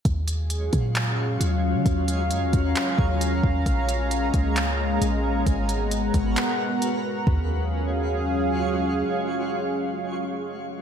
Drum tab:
HH |xxxxx-x-|xxxxx-x-|xxxxx-x-|xxxxx-x-|
CP |----x---|----x---|----x---|----x---|
FT |--------|--------|--------|--------|
BD |o--o----|o--o-o-o|o--o----|o--o----|

HH |--------|--------|
CP |--------|--------|
FT |o-------|--------|
BD |o-------|--------|